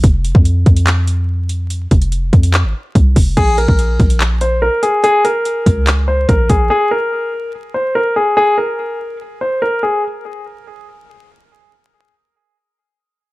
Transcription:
<<
  \new Staff \with { instrumentName = "Grand piano" } { \time 4/4 \key bes \minor \tempo 4 = 144 r1 | r1 | aes'8 bes'4. r8 c''8 bes'8 aes'8 | aes'8 bes'4. r8 c''8 bes'8 aes'8 |
aes'8 bes'4. r8 c''8 bes'8 aes'8 | aes'8 bes'4. r8 c''8 bes'8 aes'8 | r1 | r1 | }
  \new Staff \with { instrumentName = "808-style bass" } { \clef bass \time 4/4 \key bes \minor f,,8. f,8. f,2~ f,8~ | f,8 f,,4 f,8. aes,,16 r8 c,8 f,,8 | bes,,8. bes,,8. bes,,4.~ bes,,16 r8. | r4. des,4. bes,,8 bes,,8 |
r1 | r1 | r1 | r1 | }
  \new DrumStaff \with { instrumentName = "Drums" } \drummode { \time 4/4 <hh bd>8 hh16 bd16 hh8 <hh bd>16 hh16 <hc hh>8 hh8 r8 hh8 | hh8 <hh bd>16 hh16 hh8 <hh bd>16 hh16 <hc hh>4 <hh bd>8 <hho bd>8 | <cymc hh bd>8 hh16 bd16 hh8 <hh bd>16 hh16 <hc hh>8 hh8 r8 hh8 | hh8 hh8 hh8 <hh bd>8 <hc hh>4 <hh bd>8 <hh bd>8 |
r4 r4 r4 r4 | r4 r4 r4 r4 | r4 r4 r4 r4 | r4 r4 r4 r4 | }
>>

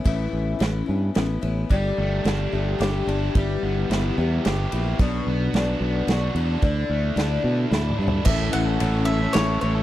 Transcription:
<<
  \new Staff \with { instrumentName = "Mandolin" } { \time 3/4 \key a \mixolydian \tempo 4 = 110 r2. | r2. | r2. | r2. |
r2. | e''8 fis''4 e''8 cis''8 cis''8 | }
  \new Staff \with { instrumentName = "Tonewheel organ" } { \time 3/4 \key a \mixolydian r2. | r2. | r2. | r2. |
r2. | <cis' e' a'>2. | }
  \new Staff \with { instrumentName = "Overdriven electric guitar" } { \time 3/4 \key a \mixolydian r2. | g8 a8 d'8 a8 g'8 d'8 | g8 b8 e'8 b8 g'8 e'8 | b,8 b8 d'8 b8 fis'8 d'8 |
d8 a8 d'8 a8 e'8 d'8 | <a, a cis' e' a'>16 <cis' e' a'>8 <cis' e' a'>16 <a, a cis' e' a'>8 <a cis' e' a'>16 <cis' e' a'>8 <cis' e' a'>16 <a cis' e' a'>16 <cis' e' a'>16 | }
  \new Staff \with { instrumentName = "Twelve-string acoustic guitar" } { \time 3/4 \key a \mixolydian <a, e b cis' e'>4 <e b cis' e'>8 <b cis' e'>8 <e b cis' e'>8 <b cis' e'>8 | <g a d' g'>4 <g a d' g'>8 <a d' g'>8 <g a d' g'>8 <a d' g'>8 | <g b e' g'>4 <g b e' g'>8 <b e' g'>8 <g b e' g'>8 <b e' g'>8 | <b, fis b d' fis'>4 <fis b d' fis'>4 <fis b d' fis'>4 |
<d a d' e'>4 <d a d' e'>4 <d a d' e'>8 <a d' e'>8 | <a, e a cis' e'>4 <e a cis' e'>8 <a cis' e'>8 <e a cis' e'>8 <a cis' e'>8 | }
  \new Staff \with { instrumentName = "Fingered electric bass" } { \clef bass \time 3/4 \key a \mixolydian a,,8 a,,8 a,,8 g,8 a,,8 a,,8 | g,,8 g,,8 g,,8 g,,8 g,,8 g,,8 | g,,8 g,,8 g,,8 e,8 g,,8 ais,,8 | b,,8 b,,8 b,,8 b,,8 b,,8 e,8 |
d,8 d,8 d,8 b,8 d,8 g,8 | a,,8 a,,8 a,,4 a,,8 a,,8 | }
  \new DrumStaff \with { instrumentName = "Drums" } \drummode { \time 3/4 <bd cymr>4 <cymr sn>4 <cymr sn>8 cymr8 | <bd cymr>4 <cymr sn>4 <cymr sn>8 cymr8 | <bd cymr>4 <cymr sn>4 <cymr sn>8 cymr8 | <bd cymr>4 <cymr sn>4 <cymr sn>8 cymr8 |
<bd cymr>4 <cymr sn>4 \tuplet 3/2 { sn8 toml8 tomfh8 } | <cymc bd>8 cymr8 cymr4 <cymr sn>4 | }
>>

